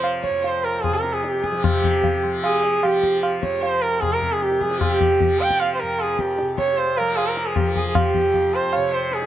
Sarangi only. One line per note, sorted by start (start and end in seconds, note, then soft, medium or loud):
0.23 0.44 C#5 medium
0.42 0.65 C5 medium
0.64 0.85 A#4 medium
0.83 0.95 G#4 medium
0.94 1.14 A#4 medium
1.13 1.24 G#4 medium
1.23 1.45 G4 medium
1.43 1.65 G#4 medium
1.63 2.23 G4 medium
2.44 2.85 G#4 medium
2.84 3.23 G4 medium
3.42 3.63 C#5 medium
3.62 3.83 C5 medium
3.81 4.03 A#4 medium
4.02 4.14 G#4 medium
4.12 4.33 A#4 medium
4.32 4.44 G#4 medium
4.42 4.63 G4 medium
4.61 4.80 G#4 medium
4.81 5.42 G4 medium
5.40 5.61 G5 loud
5.60 5.74 F5 loud
5.74 5.81 C5 medium
5.79 6.02 A#4 medium
6.01 6.21 G#4 medium
6.20 6.39 G4 medium
6.59 6.79 C#5 medium
6.77 6.99 C5 medium
6.97 7.19 A#4 medium
7.17 7.28 G#4 medium
7.27 7.47 A#4 medium
7.46 7.58 G#4 medium
7.56 7.78 G4 medium
7.76 7.88 G#4 medium
7.88 7.97 G#4 medium
7.96 8.55 G4 medium
8.54 8.75 C5 medium
8.73 8.95 C#5 medium
8.94 9.15 C5 medium
9.14 9.26 G#4 medium